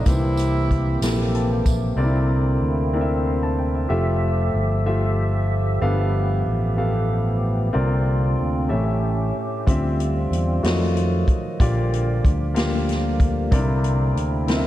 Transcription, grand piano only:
0.06 0.99 C3 soft
0.06 0.73 A#3 medium
0.06 0.13 D#4 soft
0.06 0.73 G4 medium
0.06 0.73 C5 medium
0.14 0.76 E4 medium
1.02 1.69 A#3 medium
1.02 1.69 E4 medium
1.02 1.69 G4 medium
1.02 1.69 A4 medium
1.35 1.50 A5 medium
1.51 1.66 G5 medium
1.67 1.97 E5 soft
1.97 2.90 C3 medium
1.97 2.64 C4 medium
1.97 2.05 D4 medium
1.97 2.64 A#4 medium
1.97 2.64 D5 medium
2.04 2.67 E4 medium
2.93 3.60 C4 medium
2.93 3.60 E4 medium
2.93 3.60 A#4 medium
2.93 3.01 D5 medium
3.01 3.30 E5 medium
3.26 3.42 C6 medium
3.43 3.58 A5 medium
3.59 3.74 G5 medium
3.75 3.88 E5 medium
3.90 4.56 A3 medium
3.90 4.56 F4 medium
3.90 4.56 G4 medium
3.90 4.56 E5 medium
4.86 5.52 A3 medium
4.86 5.52 F4 medium
4.86 5.52 G4 medium
4.86 5.53 E5 medium
5.81 6.74 G2 medium
5.81 6.48 B3 medium
5.81 6.48 G4 medium
5.81 6.48 A4 medium
5.81 6.48 F5 medium
6.76 7.43 B3 medium
6.76 7.44 G4 medium
6.76 7.44 A4 medium
6.76 7.44 F5 medium
7.73 8.66 C3 medium
7.73 8.40 C4 medium
7.73 8.40 F4 medium
7.73 8.40 A#4 medium
7.73 8.40 D5 medium
8.68 9.62 A2 medium
8.68 9.36 C#4 medium
8.68 9.36 G4 medium
8.68 9.36 A4 medium
8.68 9.36 E5 medium
9.67 10.59 D3 medium
9.67 10.33 C4 medium
9.67 10.33 F4 medium
9.67 10.33 G4 medium
9.67 10.33 E5 medium
10.63 10.69 F#3 medium
10.63 11.29 F4 medium
10.63 11.29 F#4 medium
10.63 11.30 D#5 medium
10.70 11.33 A3 medium
11.60 12.52 A#2 medium
11.60 12.26 A#3 medium
11.60 12.26 F4 medium
11.60 12.26 G4 medium
11.60 12.26 D5 medium
12.54 13.21 A#3 medium
12.54 13.21 F4 medium
12.54 13.22 G4 medium
12.54 13.22 F5 medium
13.51 14.44 C3 medium
13.51 14.18 C4 medium
13.51 13.58 D4 medium
13.51 14.18 A#4 medium
13.51 14.19 D5 medium
13.58 14.21 E4 medium
14.48 14.67 C4 medium
14.48 14.67 E4 medium
14.48 14.67 A#4 medium
14.48 14.55 D#5 medium
14.56 14.67 E5 medium

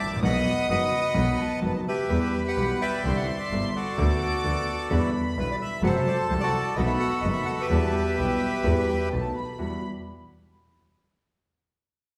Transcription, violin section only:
0.00 0.19 D6 medium
0.23 1.16 D#6 medium
1.15 1.37 B5 medium
1.40 1.87 A5 medium
2.10 3.00 B5 medium
3.04 3.93 C6 medium
3.98 4.86 D6 loud
4.90 5.79 B5 medium
5.82 6.72 A5 medium
6.76 7.70 B5 medium
7.70 8.14 A5 medium
8.16 8.61 G5 medium
8.65 8.89 B5 medium
8.88 9.12 G5 medium
9.12 9.36 A5 medium
9.36 9.58 B5 medium
9.61 9.82 B5 medium

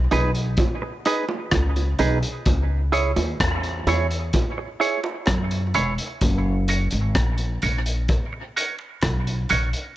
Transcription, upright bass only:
0.12 0.55 B1 medium
1.52 1.96 C#2 loud
1.99 2.21 B1 medium
2.46 3.13 C#2 medium
3.16 3.38 D#2 medium
3.40 3.84 E2 medium
3.87 4.31 E2 loud
5.28 5.72 F#2 medium
5.75 5.97 E1 medium
6.22 6.88 F#1 loud
6.93 7.14 G#1 medium
7.15 7.59 A#1 medium
7.63 8.06 A#1 medium
9.03 9.47 B1 medium
9.51 9.72 A#1 medium

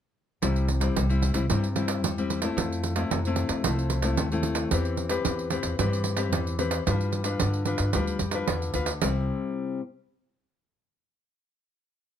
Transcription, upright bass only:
0.43 0.88 C2 medium
0.97 1.30 C2 medium
1.35 1.47 C2 medium
1.50 2.04 G2 loud
2.04 2.49 E2 medium
2.57 3.03 F2 medium
3.11 3.45 F2 medium
3.49 3.61 F2 medium
3.64 4.18 C2 medium
4.18 4.64 D#2 medium
4.72 5.18 E2 medium
5.25 5.60 E2 medium
5.64 5.76 E2 medium
5.79 6.33 G2 loud
6.33 6.79 E2 medium
6.87 7.33 G2 medium
7.41 7.76 G2 medium
7.79 7.92 G2 medium
7.95 8.20 D2 loud
8.21 8.46 F2 medium
8.49 8.73 E2 medium
8.74 8.99 D2 medium
9.03 9.28 C2 medium

